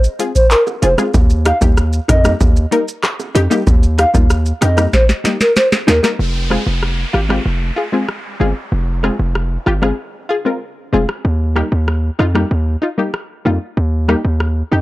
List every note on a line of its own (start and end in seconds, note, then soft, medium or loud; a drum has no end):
0.04 shaker medium
0.19 0.32 G#3 medium
0.19 0.32 C4 medium
0.19 0.32 F4 medium
0.19 0.33 G#4 medium
0.19 closed hi-hat medium
0.19 shaker soft
0.35 0.47 C5 medium
0.35 kick medium
0.35 shaker medium
0.51 0.63 A#4 medium
0.51 clap medium
0.51 shaker medium
0.67 high bongo medium
0.67 shaker soft
0.82 0.95 F1 medium
0.82 0.89 F4 medium
0.82 0.89 G#4 medium
0.82 0.94 C5 medium
0.82 closed hi-hat medium
0.82 low bongo medium
0.82 shaker medium
0.98 1.11 G#3 medium
0.98 1.11 C4 medium
0.98 1.11 F4 medium
0.98 1.11 G#4 medium
0.98 cross-stick medium
0.98 high bongo medium
0.98 shaker medium
1.14 1.52 D#2 loud
1.14 kick loud
1.14 high bongo medium
1.14 shaker medium
1.30 shaker soft
1.45 1.52 D#4 medium
1.45 1.53 G4 medium
1.45 1.58 F5 medium
1.45 cross-stick loud
1.45 closed hi-hat medium
1.45 shaker soft
1.61 2.00 D#2 loud
1.61 1.74 G3 medium
1.61 1.74 A#3 medium
1.61 1.74 D#4 medium
1.61 1.75 G4 medium
1.61 kick loud
1.61 shaker medium
1.77 cross-stick medium
1.77 shaker medium
1.93 shaker medium
2.08 2.35 F2 medium
2.08 2.15 D#4 medium
2.08 2.16 A#4 medium
2.08 2.32 D#5 medium
2.08 kick medium
2.08 cross-stick medium
2.08 closed hi-hat medium
2.08 high bongo medium
2.08 shaker medium
2.24 2.37 G3 medium
2.24 2.37 A#3 medium
2.24 2.38 D#4 medium
2.24 2.38 G4 medium
2.24 cross-stick loud
2.24 shaker medium
2.40 2.66 D#2 loud
2.40 kick loud
2.40 high bongo medium
2.40 shaker medium
2.56 shaker medium
2.71 2.84 G3 medium
2.71 2.85 A#3 medium
2.71 2.85 D#4 medium
2.71 2.85 A#4 loud
2.71 closed hi-hat medium
2.71 shaker soft
2.88 shaker medium
3.04 cross-stick medium
3.04 clap medium
3.04 shaker medium
3.20 high bongo medium
3.20 shaker soft
3.35 3.48 F2 loud
3.35 3.41 D#4 medium
3.35 3.42 G4 loud
3.35 closed hi-hat medium
3.35 low bongo medium
3.35 shaker medium
3.50 3.63 G3 medium
3.50 3.64 A#3 medium
3.50 3.64 D#4 medium
3.50 3.64 G4 medium
3.50 high bongo medium
3.50 shaker medium
3.67 4.05 D#2 loud
3.67 kick loud
3.67 high bongo medium
3.67 shaker medium
3.83 shaker soft
3.98 4.04 D#4 medium
3.98 4.05 G4 medium
3.98 4.10 F5 medium
3.98 cross-stick loud
3.98 closed hi-hat medium
3.98 shaker soft
4.14 4.53 D#2 loud
4.14 4.27 G3 medium
4.14 4.27 A#3 medium
4.14 4.27 D#4 medium
4.14 4.27 F4 medium
4.14 kick medium
4.14 shaker medium
4.30 cross-stick medium
4.30 shaker medium
4.46 shaker medium
4.61 4.87 F2 loud
4.61 4.68 D#4 medium
4.61 4.68 G4 medium
4.61 4.85 D#5 medium
4.61 cross-stick medium
4.61 closed hi-hat medium
4.61 high bongo medium
4.61 low bongo medium
4.61 shaker medium
4.77 4.90 G3 medium
4.77 4.90 A#3 medium
4.77 4.90 D#4 medium
4.77 4.90 G4 medium
4.77 cross-stick loud
4.77 shaker medium
4.93 5.05 C5 medium
4.93 kick loud
4.93 snare medium
4.93 high bongo medium
4.93 shaker medium
5.09 snare medium
5.09 shaker medium
5.24 5.37 G3 medium
5.24 5.37 A#3 medium
5.24 5.37 D#4 medium
5.24 5.38 G4 medium
5.24 snare medium
5.24 closed hi-hat medium
5.24 shaker soft
5.41 5.52 A#4 medium
5.41 snare medium
5.41 shaker medium
5.56 5.68 C5 medium
5.56 snare medium
5.56 shaker medium
5.72 snare medium
5.72 high bongo medium
5.72 shaker soft
5.87 6.01 D#2 medium
5.87 5.94 D#4 medium
5.87 5.94 F4 medium
5.87 6.00 A#4 medium
5.87 snare loud
5.87 closed hi-hat medium
5.87 low bongo medium
5.87 shaker medium
6.03 6.16 G3 medium
6.03 6.16 A#3 medium
6.03 6.16 D#4 medium
6.03 6.16 A#4 medium
6.03 snare medium
6.03 high bongo medium
6.03 shaker medium
6.19 6.58 F1 loud
6.19 downlifter medium
6.50 6.63 G#3 medium
6.50 6.63 C4 medium
6.50 6.64 F4 medium
6.50 6.64 G#4 loud
6.50 cross-stick medium
6.67 7.05 F1 medium
6.83 cross-stick medium
7.13 7.40 G#1 medium
7.13 7.20 F4 medium
7.13 7.21 G4 loud
7.13 cross-stick medium
7.29 7.42 G#3 medium
7.29 7.42 C4 medium
7.29 7.43 F4 medium
7.29 7.43 G4 medium
7.29 cross-stick loud
7.46 7.71 F1 loud
7.76 7.83 F4 medium
7.76 7.84 G#4 loud
7.92 8.05 G#3 medium
7.92 8.06 C4 medium
7.92 8.06 F4 medium
7.92 8.06 G#4 medium
8.09 cross-stick medium
8.40 8.53 G1 medium
8.40 8.53 G#3 medium
8.40 8.53 C4 medium
8.40 8.53 F4 medium
8.40 8.53 G#4 loud
8.72 9.10 F1 loud
9.03 9.16 G#3 medium
9.03 9.16 C4 medium
9.03 9.16 F4 medium
9.03 9.17 G#4 medium
9.03 cross-stick medium
9.19 9.58 F1 loud
9.35 cross-stick medium
9.66 9.92 G1 medium
9.66 9.73 F4 medium
9.66 9.73 G4 loud
9.66 cross-stick medium
9.82 9.95 G#3 medium
9.82 9.95 C4 medium
9.82 9.95 F4 medium
9.82 9.95 G#4 medium
9.82 cross-stick loud
10.29 10.36 F4 medium
10.29 10.37 G#4 loud
10.45 10.58 G#3 medium
10.45 10.58 C4 medium
10.45 10.58 F4 medium
10.45 10.59 A#4 medium
10.93 11.06 F1 medium
10.93 11.05 G#3 medium
10.93 11.06 C4 medium
10.93 11.06 F4 medium
10.93 11.06 G#4 loud
11.09 cross-stick medium
11.25 11.63 D#2 loud
11.55 11.69 G3 medium
11.55 11.69 A#3 medium
11.55 11.69 D#4 medium
11.55 11.69 G4 loud
11.55 cross-stick medium
11.72 12.10 D#2 medium
11.88 cross-stick medium
12.19 12.45 F2 medium
12.19 12.25 D#4 medium
12.19 12.26 F4 loud
12.19 cross-stick medium
12.35 12.48 G3 medium
12.35 12.48 A#3 medium
12.35 12.48 D#4 medium
12.35 12.48 G4 medium
12.35 cross-stick loud
12.51 12.77 D#2 loud
12.82 12.88 D#4 medium
12.82 12.89 F4 loud
12.98 13.11 G3 medium
12.98 13.11 A#3 medium
12.98 13.11 D#4 medium
12.98 13.11 G4 medium
13.14 cross-stick medium
13.45 13.59 F2 medium
13.45 13.58 G3 medium
13.45 13.58 A#3 medium
13.45 13.59 D#4 medium
13.45 13.59 F4 loud
13.77 14.16 D#2 loud
14.08 14.21 G3 medium
14.08 14.21 A#3 medium
14.08 14.22 D#4 medium
14.08 14.22 G4 medium
14.08 cross-stick loud
14.25 14.63 D#2 medium
14.40 cross-stick medium
14.71 14.82 F2 medium
14.71 14.78 D#4 medium
14.71 14.79 G4 loud